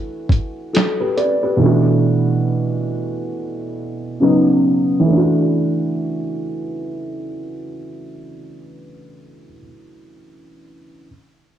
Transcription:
Already playing: E3 A3 D4 F#4
0.29 kick, closed hi-hat
0.73 F#4 A4, snare, closed hi-hat
1.00 G4 B4
1.17 B4 D5, closed hi-hat
1.43 G4 B4
1.57 B2 E3
1.61 A3 D4
1.66 F#4
4.20 C#3 F#3 B3
4.24 D#4
4.99 E3
5.05 A3
5.11 D4
5.17 F#4

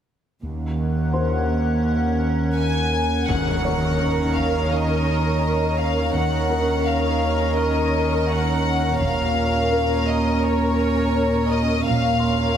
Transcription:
0.42 D#2 C#4 A#4 F#5
1.13 C5 C6
2.57 G#5
3.28 D#2 D#3 C#4 A#4 C#5 F#5 A#5, taiko, impact
3.65 C#5 C#6
4.35 F5, taiko
4.71 D#5
5.79 F5
6.14 D#2 D#3 C#4 A#4 C#5 F#5 A#5
6.50 A#4 A#5
6.86 F5
7.57 D#5 F6
8.29 F#5
9.00 A#1 D#2 A#2 C#4 A#4 C#5 F5 A#5, taiko
9.72 A#4
10.08 D#5
10.44 C#5
11.50 D#5
11.86 A#1 D#2 A#2 C#4 A#4 C#5 F5 A#5
12.19 C6

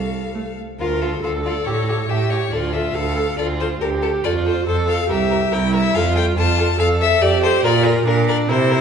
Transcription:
Already playing: C2 A4 F5
0.35 A3
0.80 D2 F4 A#4
1.01 F4 A4
1.23 D2 F4 A4
1.45 F4 D5
1.65 A2 G4 C#5
1.88 G4
2.09 A2 G4 E5
2.30 G4 C#5
2.52 D2 F4 A4 D5
2.73 A4 E5
2.94 D2 A4 F5
3.17 A4
3.38 D2 F4 A4 D5
3.60 A4 C5
3.81 D2 G4 A4 A#4
4.02 A4
4.24 F2 F4 A4 D5
4.46 A4 C5
4.67 F2 A4 C5
4.88 A4 F5
5.09 C2 G4 A#4 E5
5.31 A#4
5.52 C2 E4 A#4 G5
5.73 A#4 E5
5.95 F2 F4 A4 F5
6.15 A4 G5
6.37 F2 F4 A4 A5
6.58 A4
6.79 F2 A4 F5
7.00 A4 E5
7.21 F2 G4 A4 D5
7.42 A4 C5
7.64 A#2 F4 A#4 D5
7.85 A#4
8.06 A#2 D4 A#4
8.28 A#4 D5
8.48 C3 E4 A#4 C5
8.71 A#4

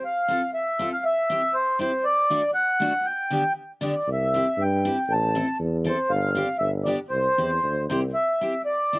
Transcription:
0.05 F5
0.28 C4 F4 A4
0.54 E5
0.79 C4 F4 A4
0.93 F5
1.05 E5
1.30 C4 E4 G4
1.54 C5
1.79 C4 E4 G4 C5
2.04 D5
2.30 A3 D4 F#4
2.54 F#5
2.80 A3 D4 F#4
3.05 G5
3.30 D3 B3 D4 G4
3.81 D3 B3 D4 G4
3.86 D5
4.07 C2
4.12 E5
4.34 C4 E4 G4
4.57 G2
4.62 G5
4.85 C4 E4 G4
5.08 A1 A5
5.35 C4 E4 A4
5.59 E2
5.84 C4 E4 A4 C5
6.09 G1 F5
6.35 C4 D4 G4
6.59 G1 E5
6.84 B3 D4 D5
6.88 G4
7.10 C2 C5
7.38 E2 C4 E4 G4
7.64 D2
7.89 C2 C4 E4 G4 C5
8.14 E5
8.41 C4 E4 G4
8.65 D5
8.93 C4 E4 G4

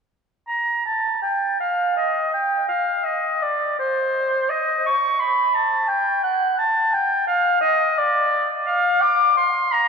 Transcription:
0.48 A#5
0.86 A5
1.22 G5
1.60 F5
1.97 D#5
2.33 G5
2.68 F5
3.04 D#5
3.42 D5
3.79 C5
4.49 D#5
4.86 C#6
5.20 B5
5.55 A5
5.88 G5
6.23 F#5
6.58 A5
6.94 G5
7.27 F5
7.61 D#5
7.98 D5
8.66 F5
9.01 D6
9.37 C6
9.72 A#5

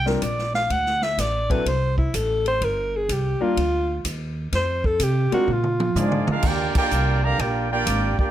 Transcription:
Already playing: C2
0.06 G3 C4 D4 F4 A#4, snare
0.22 A#1 D5, kick, hi-hat pedal, ride
0.38 snare
0.54 F5, snare
0.70 D2 F#5, kick, ride
0.86 snare
1.02 E5, snare
1.18 A1 D5, kick, snare, hi-hat pedal, ride
1.50 F#3 C4 D4 E4 A4 B4, kick, ride
1.65 C2 C5, kick, ride
1.98 E4, kick
2.14 A1 A4, kick, hi-hat pedal, ride
2.46 C5, ride
2.61 G1 A#4, kick, ride
2.96 G#4
3.09 C2 G4, kick, hi-hat pedal, ride
3.41 G3 A#3 D4 F4 A#4, muted upright bass stroke
3.57 D2, kick, ride
4.04 D#2, kick, hi-hat pedal, ride
4.52 F2 C5, kick, snare, ride
4.84 A4, kick
5.00 C3 G4, kick, hi-hat pedal, ride
5.32 G#3 C4 D4 F4 F#4 A#4, muted upright bass stroke, ride
5.48 A#2, mid tom
5.52 F4
5.64 mid tom
5.80 high tom
5.95 G#2 F3 G#3 A#3 D4 F4 G#4 D5, hi-hat pedal, mid tom
6.12 mid tom
6.27 G#3 D4 F4 G#4 A#4 F5, muted upright bass stroke, mid tom
6.42 D#2 F4 D5 G5, kick, crash
6.47 A#3 D4 G4 A#4
6.75 A#3 D4 F4 G4 A#4 D5 G5, kick, crash
6.91 C2, hi-hat pedal
7.25 D3 G3 A#3 G4 D5 F5 A#5
7.39 A#1 A#3 D4 F4 G4 A#4 D5 G5, kick, ride
7.71 A#3 D4 F4 G4 A#4 D5 G5
7.86 G#1, kick, hi-hat pedal, ride
8.19 A#3 D4 F4 G4 A#4 D5 G5, muted upright bass stroke, kick

